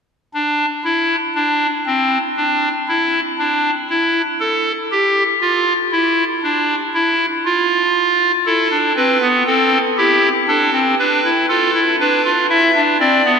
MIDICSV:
0, 0, Header, 1, 2, 480
1, 0, Start_track
1, 0, Tempo, 1020408
1, 158, Time_signature, 4, 2, 24, 8
1, 2557, Tempo, 1010101
1, 6339, End_track
2, 0, Start_track
2, 0, Title_t, "Pipe organ"
2, 0, Program_c, 0, 19
2, 159, Note_on_c, 0, 62, 72
2, 308, Note_off_c, 0, 62, 0
2, 396, Note_on_c, 0, 64, 74
2, 546, Note_off_c, 0, 64, 0
2, 635, Note_on_c, 0, 62, 75
2, 784, Note_off_c, 0, 62, 0
2, 876, Note_on_c, 0, 60, 69
2, 1025, Note_off_c, 0, 60, 0
2, 1113, Note_on_c, 0, 62, 76
2, 1263, Note_off_c, 0, 62, 0
2, 1357, Note_on_c, 0, 64, 74
2, 1506, Note_off_c, 0, 64, 0
2, 1592, Note_on_c, 0, 62, 71
2, 1743, Note_off_c, 0, 62, 0
2, 1833, Note_on_c, 0, 64, 74
2, 1984, Note_off_c, 0, 64, 0
2, 2070, Note_on_c, 0, 69, 82
2, 2221, Note_off_c, 0, 69, 0
2, 2312, Note_on_c, 0, 67, 72
2, 2461, Note_off_c, 0, 67, 0
2, 2544, Note_on_c, 0, 65, 76
2, 2697, Note_off_c, 0, 65, 0
2, 2787, Note_on_c, 0, 64, 74
2, 2939, Note_off_c, 0, 64, 0
2, 3030, Note_on_c, 0, 62, 76
2, 3181, Note_off_c, 0, 62, 0
2, 3272, Note_on_c, 0, 64, 75
2, 3423, Note_off_c, 0, 64, 0
2, 3514, Note_on_c, 0, 65, 74
2, 3925, Note_off_c, 0, 65, 0
2, 3994, Note_on_c, 0, 69, 76
2, 3995, Note_on_c, 0, 64, 65
2, 4097, Note_off_c, 0, 64, 0
2, 4111, Note_on_c, 0, 62, 65
2, 4142, Note_off_c, 0, 69, 0
2, 4215, Note_off_c, 0, 62, 0
2, 4233, Note_on_c, 0, 60, 64
2, 4235, Note_on_c, 0, 71, 76
2, 4336, Note_off_c, 0, 60, 0
2, 4350, Note_on_c, 0, 59, 60
2, 4383, Note_off_c, 0, 71, 0
2, 4455, Note_off_c, 0, 59, 0
2, 4473, Note_on_c, 0, 60, 66
2, 4473, Note_on_c, 0, 69, 77
2, 4622, Note_off_c, 0, 60, 0
2, 4622, Note_off_c, 0, 69, 0
2, 4713, Note_on_c, 0, 67, 72
2, 4715, Note_on_c, 0, 64, 68
2, 4862, Note_off_c, 0, 67, 0
2, 4864, Note_off_c, 0, 64, 0
2, 4952, Note_on_c, 0, 62, 70
2, 4953, Note_on_c, 0, 69, 80
2, 5056, Note_off_c, 0, 62, 0
2, 5071, Note_on_c, 0, 60, 61
2, 5102, Note_off_c, 0, 69, 0
2, 5176, Note_off_c, 0, 60, 0
2, 5195, Note_on_c, 0, 71, 77
2, 5196, Note_on_c, 0, 62, 69
2, 5298, Note_off_c, 0, 62, 0
2, 5318, Note_on_c, 0, 64, 60
2, 5344, Note_off_c, 0, 71, 0
2, 5419, Note_off_c, 0, 64, 0
2, 5433, Note_on_c, 0, 69, 72
2, 5434, Note_on_c, 0, 65, 61
2, 5537, Note_off_c, 0, 65, 0
2, 5554, Note_on_c, 0, 64, 69
2, 5582, Note_off_c, 0, 69, 0
2, 5657, Note_off_c, 0, 64, 0
2, 5677, Note_on_c, 0, 62, 72
2, 5677, Note_on_c, 0, 71, 81
2, 5779, Note_off_c, 0, 62, 0
2, 5792, Note_on_c, 0, 65, 62
2, 5825, Note_off_c, 0, 71, 0
2, 5896, Note_off_c, 0, 65, 0
2, 5909, Note_on_c, 0, 64, 73
2, 5912, Note_on_c, 0, 76, 83
2, 6015, Note_off_c, 0, 64, 0
2, 6035, Note_on_c, 0, 62, 69
2, 6061, Note_off_c, 0, 76, 0
2, 6137, Note_off_c, 0, 62, 0
2, 6151, Note_on_c, 0, 60, 71
2, 6152, Note_on_c, 0, 74, 84
2, 6255, Note_off_c, 0, 60, 0
2, 6271, Note_on_c, 0, 59, 65
2, 6301, Note_off_c, 0, 74, 0
2, 6339, Note_off_c, 0, 59, 0
2, 6339, End_track
0, 0, End_of_file